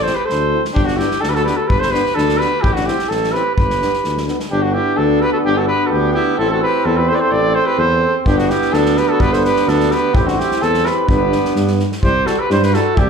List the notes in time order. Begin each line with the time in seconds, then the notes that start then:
0.02 E4 A4 C5
0.06 C4, snare
0.13 G4 B4
0.25 A4 C5
0.29 D2, snare
0.53 C4 E4
0.65 snare
0.73 D4 G4, kick
0.78 G1
0.83 D4 F#4
0.88 snare
0.96 D4 E4 G4, snare
1.00 B3
1.11 snare
1.21 D2 D4 A4, snare
1.29 G4 B4
1.33 F#4 A4, snare
1.43 B3 D4 G4 B4, snare
1.56 F#4 A4
1.65 G4 B4
1.70 G1, kick
1.79 A4 C5, snare
1.89 D4 G4 B4
1.94 B3, snare
2.06 snare
2.14 D2 D4 A4, snare
2.29 snare
2.37 B3 D4 G4 B4, snare
2.62 A1 E4 G4, kick
2.73 D4 F#4, snare
2.85 C4 E4 G4, snare
2.99 snare
3.09 A1 E4 A4, snare
3.23 snare
3.32 C4 E4 G4 B4, snare
3.56 G1 G4 B4, kick
3.70 snare
3.80 B3 D4, snare
3.93 snare
4.04 D2, snare
4.17 snare
4.26 B3 D4, snare
4.39 snare
4.49 G1 B3 D4 G4
4.62 D4 F#4
4.73 E4 G4
4.95 D2 D4 A4
5.21 G4 B4
5.32 F#4 A4
5.44 G1 D4 G4
5.57 F#4 A4
5.67 G4 B4
5.86 F#4 G4 A4
5.92 D2 D4
6.14 E4 G4
6.37 A1 C4 E4 A4
6.50 F#4 A4
6.63 G4 B4
6.85 E2 E4 A4
6.97 G4 B4
7.08 A4 C5
7.15 B4 D5
7.20 A4 C5
7.31 A1 A4 D5
7.55 A4 C5
7.66 G4 B4
7.78 E2 A4 C5
8.25 G1 B3 D4 G4, kick
8.37 D4 F#4, snare
8.50 E4 G4, snare
8.61 snare
8.73 D2 D4 A4, snare
8.85 snare
8.97 G4 B4, snare
9.09 F#4 A4
9.20 G1 G4 B4, kick
9.32 A4 C5, snare
9.44 G4 B4, snare
9.56 snare
9.67 D2 D4 A4, snare
9.80 snare
9.90 G4 B4, snare
10.13 A1 C4 E4 G4, kick
10.24 D4 F#4, snare
10.36 E4 G4, snare
10.51 snare
10.61 E2 E4 A4, snare
10.74 snare
10.85 G4 B4, snare
11.08 G1 B3 D4 G4 B4, kick
11.32 snare
11.45 snare
11.56 G2, snare
11.67 snare
11.79 snare
11.92 snare
12.02 C2 G3 E4 G4 C5, kick
12.25 G3 E4 F#4 A4, snare
12.38 G4 B4
12.49 G2 G3 E4 G4 C5, snare
12.60 G4 B4, snare
12.71 G3 E4 F#4 A4, snare
12.95 C2 G3 E4 G4, kick